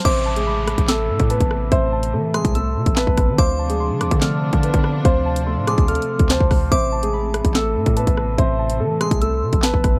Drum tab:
CC |x-----------------------------------------------|------------------------------------------------|------------------------------------------------|------------------------------------------------|
HH |x--------x--------x--x-----------x--x--x--------|x--------x--------x--x--x--------x--------x-----|x--------x--------x--x-----------x--x--x--------|x--------x--------x--x--x-x-x----x--------o-----|
CP |------------------------x-----------------------|------------------------------------x-----------|------------------------x-----------------------|------------------------------------x-----------|
SD |------------------r-----o-----------------r-----|------------------r-----------------o-----r-----|------------------r-----o-----------------r-----|------------------r-----------------o-----r-----|
BD |o--------------------o-----------o-----o--------|o--------------------o-----------o-----o--o-----|o--------------------o-----------o-----o--------|o--------------------o-----------o-----o--o-----|

CC |------------------------------------------------|------------------------------------------------|
HH |x--------x--------x--x-----------x--x--x--------|x--------x--------x--x--x--------x--------x-----|
CP |------------------------x-----------------------|------------------------------------x-----------|
SD |------------------r-----o-----------------r-----|------------------r-----------------o-----r-----|
BD |o--------------------o-----------o-----o--------|o--------------------o-----------o-----o--o-----|